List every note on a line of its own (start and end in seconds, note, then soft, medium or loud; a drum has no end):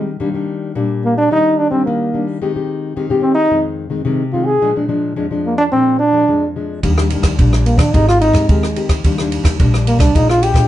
0.00 0.17 D#3 medium
0.00 0.10 D#4 medium
0.20 0.73 D#3 medium
0.20 0.28 G3 medium
0.20 0.29 A#3 medium
0.20 0.29 D4 medium
0.34 0.71 G3 medium
0.34 0.71 A#3 medium
0.34 0.71 D4 medium
0.75 1.28 A#2 medium
0.75 1.27 G3 medium
0.75 1.27 A#3 medium
0.75 1.27 D4 medium
1.05 1.17 A#3 medium
1.18 1.30 D4 loud
1.31 1.83 D#3 medium
1.31 1.68 G3 medium
1.31 1.68 A#3 medium
1.31 1.68 D4 medium
1.31 1.59 D#4 loud
1.57 1.70 D4 loud
1.70 2.09 G3 medium
1.70 2.09 A#3 medium
1.70 1.84 C4 medium
1.70 2.09 D4 medium
1.86 2.39 D#3 medium
1.86 2.24 A#3 medium
2.14 2.39 G3 medium
2.14 2.39 A#3 medium
2.14 2.39 D4 medium
2.42 2.94 D#3 medium
2.42 2.51 G#3 medium
2.42 2.51 C4 medium
2.42 2.51 G4 medium
2.55 2.92 G#3 medium
2.55 2.92 C4 soft
2.55 2.93 G4 medium
2.96 3.49 D#3 medium
2.96 3.05 G#3 medium
2.96 3.05 C4 medium
2.96 3.05 G4 medium
3.10 3.47 G#3 medium
3.10 3.47 C4 medium
3.10 3.48 G4 medium
3.22 3.34 C4 medium
3.35 3.62 D#4 loud
3.51 4.04 F2 medium
3.51 3.88 D#3 medium
3.51 3.88 G#3 medium
3.51 3.89 C4 medium
3.90 4.01 D#3 medium
3.90 4.01 G#3 medium
3.90 4.01 C4 medium
4.05 4.58 C3 medium
4.05 4.22 D#3 medium
4.05 4.22 G#3 medium
4.05 4.23 C4 medium
4.33 4.52 D#3 soft
4.33 4.52 G#3 soft
4.33 4.52 C4 medium
4.33 4.46 F4 medium
4.44 4.74 G#4 medium
4.62 5.14 A#2 medium
4.62 4.70 F3 medium
4.62 4.71 G#3 medium
4.62 4.70 D4 medium
4.76 4.85 F3 medium
4.76 4.86 G#3 medium
4.76 4.86 D4 medium
4.88 5.12 F3 medium
4.88 5.13 G#3 medium
4.88 5.13 D4 medium
5.16 5.69 F2 medium
5.16 5.25 F3 medium
5.16 5.25 G#3 medium
5.16 5.26 D4 medium
5.31 5.68 F3 medium
5.31 5.68 G#3 medium
5.31 5.69 D4 medium
5.46 5.57 A#3 medium
5.58 5.64 D4 loud
5.72 6.25 A#2 medium
5.72 5.99 F3 medium
5.72 5.99 G#3 soft
5.72 5.98 C4 loud
5.72 5.99 D4 medium
5.99 6.51 D4 loud
6.13 6.23 F3 medium
6.13 6.23 G#3 medium
6.13 6.23 D4 medium
6.28 6.80 F2 medium
6.28 6.44 F3 medium
6.28 6.45 G#3 medium
6.28 6.45 D4 medium
6.56 6.81 F3 medium
6.56 6.81 G#3 soft
6.56 6.82 D4 medium
6.83 7.19 D#2 medium
6.83 7.36 D#3 medium
6.83 6.91 G3 medium
6.83 6.92 A#3 medium
6.83 6.92 D4 medium
6.83 kick medium
6.83 ride soft
6.98 7.07 G3 medium
6.98 7.07 A#3 medium
6.98 7.07 D4 medium
6.98 cross-stick medium
7.10 7.34 G3 medium
7.10 7.34 A#3 medium
7.10 7.35 D4 medium
7.10 ride soft
7.22 7.35 D#2 medium
7.22 kick medium
7.22 cross-stick medium
7.22 ride medium
7.39 7.74 A#1 medium
7.39 7.91 A#2 medium
7.39 7.74 G3 medium
7.39 7.75 A#3 medium
7.39 7.75 D4 medium
7.39 kick medium
7.39 ride soft
7.53 cross-stick medium
7.66 7.80 A#3 medium
7.66 ride soft
7.78 7.90 D#3 medium
7.78 7.95 D4 medium
7.78 kick medium
7.78 cross-stick medium
7.78 ride soft
7.93 8.29 G#1 medium
7.93 8.47 G#3 medium
7.93 8.32 C4 medium
7.93 8.07 D#4 loud
7.93 8.32 G4 medium
7.93 8.32 A#4 medium
7.93 kick medium
7.93 ride soft
8.08 8.20 F4 loud
8.08 cross-stick medium
8.21 8.47 D#4 loud
8.21 ride soft
8.33 8.46 G#2 loud
8.33 8.44 C4 medium
8.33 8.45 G4 medium
8.33 8.45 A#4 medium
8.33 kick medium
8.33 cross-stick medium
8.33 ride soft
8.49 8.96 D#2 medium
8.49 9.02 D#3 soft
8.49 8.88 G#3 medium
8.49 8.66 C4 medium
8.49 8.66 G4 medium
8.49 8.66 A#4 medium
8.49 kick medium
8.49 ride soft
8.63 cross-stick medium
8.76 8.94 C4 medium
8.76 8.95 G4 medium
8.76 8.95 A#4 medium
8.76 ride soft
8.89 kick medium
8.89 cross-stick medium
8.89 ride soft
9.04 9.39 D#2 loud
9.04 9.57 D#3 medium
9.04 9.14 G3 medium
9.04 9.15 A#3 medium
9.04 9.15 D4 medium
9.04 kick medium
9.04 ride medium
9.18 9.56 G3 medium
9.18 9.56 A#3 medium
9.18 9.57 D4 medium
9.18 cross-stick medium
9.32 ride soft
9.44 9.56 D#2 medium
9.44 kick medium
9.44 cross-stick medium
9.44 ride medium
9.60 9.95 A#1 loud
9.60 10.12 A#2 medium
9.60 10.10 G3 medium
9.60 10.11 A#3 medium
9.60 10.11 D4 medium
9.60 kick medium
9.60 ride soft
9.74 cross-stick medium
9.87 9.99 A#3 medium
9.87 ride medium
9.99 10.11 C2 medium
9.99 10.17 D4 loud
9.99 kick medium
9.99 cross-stick medium
9.99 ride medium
10.15 10.50 A#1 medium
10.15 10.68 A#2 medium
10.15 10.52 G#3 medium
10.15 10.52 D4 medium
10.15 10.29 D#4 loud
10.15 10.53 F4 medium
10.15 kick medium
10.15 ride medium
10.30 10.44 F4 medium
10.30 cross-stick medium
10.43 10.68 G4 loud
10.43 ride soft
10.54 10.67 A#2 medium
10.54 10.68 G#3 medium
10.54 10.68 D4 medium
10.54 10.68 F4 medium
10.54 kick medium
10.54 cross-stick medium
10.54 ride soft